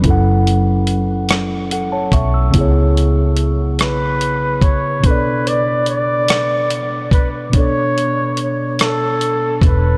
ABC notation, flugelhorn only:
X:1
M:6/8
L:1/8
Q:3/8=48
K:Bm
V:1 name="Flugelhorn"
z6 | z3 B2 c | B d d3 B | c2 z A2 B |]